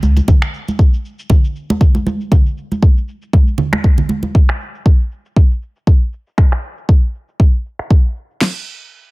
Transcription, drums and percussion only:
0.03 high conga, cabasa
0.17 closed hi-hat, high conga, cabasa
0.28 kick, low conga, cabasa
0.42 finger snap, cabasa
0.54 cabasa
0.68 high conga, cabasa
0.79 kick, cabasa
0.94 cabasa
1.05 cabasa
1.19 cabasa
1.30 kick, low conga, cabasa
1.44 cabasa
1.56 cabasa
1.70 high conga, cabasa
1.81 kick, low conga, cabasa
1.95 high conga, cabasa
2.07 high conga, cabasa
2.21 cabasa
2.32 kick, low conga, cabasa
2.46 cabasa
2.58 cabasa
2.72 high conga, cabasa
2.83 kick, cabasa
2.97 cabasa
3.08 cabasa
3.22 cabasa
3.33 kick, high conga, cabasa
3.47 cabasa
3.58 low conga, cabasa
3.73 finger snap, high conga
3.84 kick, high conga, cabasa
3.98 low conga, cabasa
4.09 high conga, cabasa
4.23 high conga, cabasa
4.35 kick, cabasa
4.49 finger snap, cabasa
4.61 cabasa
4.75 cabasa
4.86 kick
5.00 cabasa
5.11 cabasa
5.25 cabasa
5.36 kick
5.50 cabasa
5.62 cabasa
5.76 cabasa
5.87 kick
6.01 cabasa
6.13 cabasa
6.27 cabasa
6.38 finger snap, kick
6.52 finger snap, cabasa
6.64 cabasa
6.78 cabasa
6.89 kick
7.03 cabasa
7.15 cabasa
7.28 cabasa
7.40 kick
7.54 cabasa
7.66 cabasa
7.79 finger snap, cabasa
7.91 kick
8.16 cabasa
8.31 cabasa
8.41 snare, crash

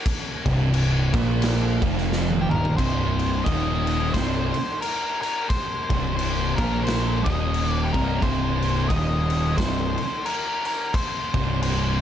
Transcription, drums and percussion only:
0.06 kick, crash
0.46 kick, crash
0.74 crash
1.14 kick, crash
1.42 snare, crash
1.82 kick, crash
1.98 snare
2.12 snare
2.30 high tom
2.51 mid tom
2.65 floor tom
2.78 kick, crash
3.19 crash
3.46 kick, crash
3.87 crash
4.14 kick, snare, crash
4.54 crash
4.82 crash
5.23 crash
5.50 kick, crash
5.90 kick, crash
6.19 crash
6.58 kick, crash
6.87 snare, crash
7.26 kick, crash
7.54 crash
7.94 kick, crash
8.22 kick, crash
8.62 crash
8.90 kick, crash
9.30 crash
9.58 kick, snare, crash
9.98 crash
10.26 crash
10.65 crash
10.94 kick, crash
11.34 kick, crash
11.62 crash

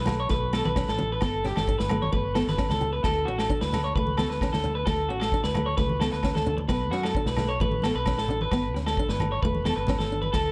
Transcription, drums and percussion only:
0.07 snare, low conga, low agogo
0.30 kick, snare
0.53 snare, low agogo
0.65 high conga
0.76 kick, snare, low agogo
0.89 snare
0.99 low conga
1.21 kick, snare, low conga, low agogo
1.45 snare, low conga
1.56 snare, high conga, low agogo
1.68 kick
1.80 snare
1.89 low conga, low agogo
2.03 high conga
2.13 kick, high conga
2.35 snare, low agogo
2.48 snare, high conga
2.58 kick, snare, low agogo
2.70 snare, high conga
2.82 low conga
3.04 kick, snare, low agogo
3.39 snare, low agogo
3.50 kick
3.61 snare
3.73 snare, low conga, low agogo
3.96 kick
4.07 high conga
4.17 snare, high conga, low agogo
4.31 snare
4.41 kick, snare, low agogo
4.53 snare, high conga
4.65 low conga
4.87 kick, snare, low agogo
5.21 snare, low agogo
5.32 kick
5.44 snare
5.55 low conga, low agogo
5.78 kick, snare
5.89 high conga
6.01 snare, high conga, low agogo
6.13 snare
6.23 kick, snare, low agogo
6.35 snare, high conga
6.47 low conga
6.58 high conga
6.68 kick, snare, low agogo
6.92 snare
7.03 snare, low agogo
7.15 kick
7.27 snare
7.37 snare, low conga, low agogo
7.60 kick
7.72 high conga
7.82 snare, high conga, low agogo
8.06 kick, snare, low agogo
8.18 snare
8.28 low conga
8.41 high conga
8.51 kick, snare, low agogo
8.76 snare
8.87 snare, low agogo
8.97 kick
9.09 snare
9.20 high conga, low conga, low agogo
9.43 kick
9.55 high conga
9.65 snare, high conga, low agogo
9.87 kick, snare, low conga, low agogo
10.00 snare, high conga
10.23 high conga
10.34 kick, snare, low agogo

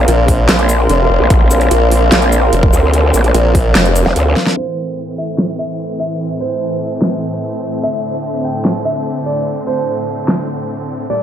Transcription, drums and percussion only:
0.08 closed hi-hat
0.28 kick, open hi-hat
0.49 snare, clap, closed hi-hat
0.59 closed hi-hat
0.69 closed hi-hat, shaker
0.89 closed hi-hat
1.30 kick, closed hi-hat
1.51 closed hi-hat, shaker
1.61 closed hi-hat
1.71 closed hi-hat
1.92 open hi-hat
2.12 snare, clap, closed hi-hat
2.22 closed hi-hat
2.32 closed hi-hat, shaker
2.53 closed hi-hat
2.63 kick
2.73 shaker
2.94 closed hi-hat
3.14 closed hi-hat, shaker
3.24 closed hi-hat
3.34 closed hi-hat
3.55 kick, open hi-hat
3.75 snare, clap, closed hi-hat
3.86 closed hi-hat
3.96 closed hi-hat, shaker
4.06 snare
4.16 closed hi-hat
4.36 snare
4.47 snare
5.38 snare
5.59 shaker
6.41 shaker
7.02 snare
7.22 shaker
8.04 shaker
8.65 snare
8.85 shaker
9.26 shaker
9.67 shaker
10.28 snare
10.49 shaker

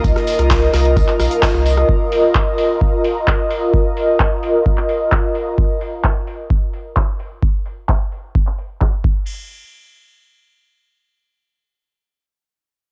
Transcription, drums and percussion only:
0.04 kick, closed hi-hat, tambourine
0.16 cross-stick, snare, closed hi-hat
0.27 open hi-hat, tambourine
0.39 cross-stick, closed hi-hat
0.50 kick, snare, clap, closed hi-hat, tambourine
0.62 closed hi-hat
0.73 cross-stick, snare, open hi-hat, tambourine
0.85 closed hi-hat
0.97 kick, cross-stick, closed hi-hat, tambourine
1.08 clap, closed hi-hat
1.20 cross-stick, open hi-hat, tambourine
1.31 closed hi-hat
1.43 kick, snare, clap, closed hi-hat, tambourine
1.55 cross-stick, closed hi-hat
1.66 open hi-hat, tambourine
1.78 cross-stick, closed hi-hat
1.89 kick
2.12 open hi-hat
2.35 kick, clap
2.58 open hi-hat
2.81 kick
3.04 open hi-hat
3.27 kick, clap
3.50 open hi-hat
3.74 kick
3.97 open hi-hat
4.20 kick, clap
4.43 open hi-hat
4.66 kick
4.77 clap
4.89 open hi-hat
5.12 kick, clap
5.35 open hi-hat
5.58 kick
5.81 open hi-hat
6.04 kick, clap
6.27 open hi-hat
6.50 kick
6.74 open hi-hat
6.97 kick, clap
7.20 open hi-hat
7.43 kick
7.66 open hi-hat
7.89 kick, clap
8.12 open hi-hat
8.35 kick
8.47 clap
8.58 open hi-hat
8.81 kick, clap
9.04 kick, crash

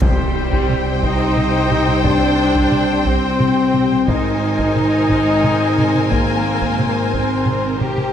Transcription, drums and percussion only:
0.02 taiko
0.53 taiko
0.69 taiko mid
1.03 taiko
1.20 taiko rim
1.37 taiko mid
1.72 taiko mid
1.88 taiko mid
2.04 taiko
2.56 taiko
2.72 taiko mid
3.06 taiko
3.40 taiko mid
3.75 taiko mid
3.91 taiko mid
4.08 taiko
4.59 taiko
4.76 taiko mid
5.10 taiko
5.44 taiko mid
5.78 taiko mid
5.95 taiko mid
6.12 taiko
6.62 taiko
6.80 taiko mid
7.14 taiko
7.47 taiko mid
7.81 taiko mid
7.98 taiko mid

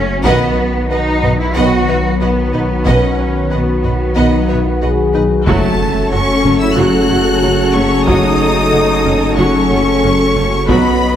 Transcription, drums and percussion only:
0.25 taiko
1.23 taiko low-mid
2.87 taiko
3.84 taiko low-mid
5.47 taiko
6.45 taiko low-mid
8.07 taiko
9.06 taiko low-mid
10.69 taiko

